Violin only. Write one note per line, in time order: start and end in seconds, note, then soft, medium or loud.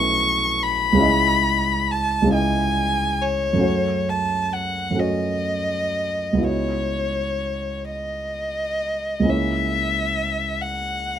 0.00 0.65 C#6 medium
0.63 1.93 B5 medium
1.91 2.33 A5 medium
2.34 3.23 G#5 medium
3.22 4.11 C#5 medium
4.10 4.55 A5 medium
4.53 5.01 F#5 medium
5.00 6.46 D#5 medium
6.44 7.90 C#5 soft
7.91 9.31 D#5 medium
9.30 10.63 E5 medium
10.61 11.19 F#5 medium